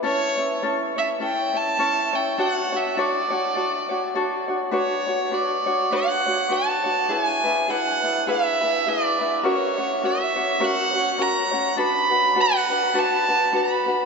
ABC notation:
X:1
M:4/4
L:1/16
Q:"Swing" 1/4=102
K:D
V:1 name="Violin"
c4 z2 e2 g2 a4 g2 | f2 e2 d8- d2 z2 | [K:Bdor] c4 d4 f4 a4 | g4 f4 e4 d3 z |
c4 e4 f4 ^a4 | b4 f4 a4 b3 z |]
V:2 name="Ukulele"
[CEAc]2 [CEc]2 [CEAc]2 [CEc]2 [CEAc]2 [CEc]2 [CEAc]2 [CEc]2 | [DFAc]2 [DFc]2 [DFAc]2 [DFc]2 [DFAc]2 [DFc]2 [DFAc]2 [DFc]2 | [K:Bdor] [DFBc]2 [DFc]2 [DFBc]2 [DFc]2 [DFBc]2 [DFc]2 [DFBc]2 [DFc]2 | [DEGB]2 [DEB]2 [DEGB]2 [DEB]2 [DEGB]2 [DEB]2 [DEGB]2 [DEB]2 |
[CF^Ac]2 [CFc]2 [CFAc]2 [CFc]2 [CFAc]2 [CFc]2 [CFAc]2 [CFc]2 | [DFAB]2 [DFB]2 [DFAB]2 [DFB]2 [DFAB]2 [DFB]2 [DFAB]2 [DFB]2 |]